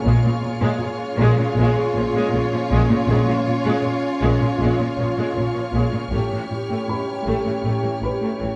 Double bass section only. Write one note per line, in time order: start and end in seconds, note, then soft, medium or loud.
0.05 0.13 A#1 medium
1.20 1.27 A#1 medium
1.57 1.65 A#1 loud
1.95 2.03 A#1 medium
2.33 2.41 A#1 medium
2.71 2.79 A#1 loud
3.09 3.17 A#1 medium
4.23 4.30 A#1 medium
4.61 4.68 A#1 medium
4.98 5.06 A#1 medium
5.36 5.44 A#1 soft
5.74 5.81 A#1 medium
6.12 6.20 A1 medium
7.26 7.34 A1 medium
7.65 7.72 A1 medium
8.03 8.10 A1 soft
8.41 8.49 A1 soft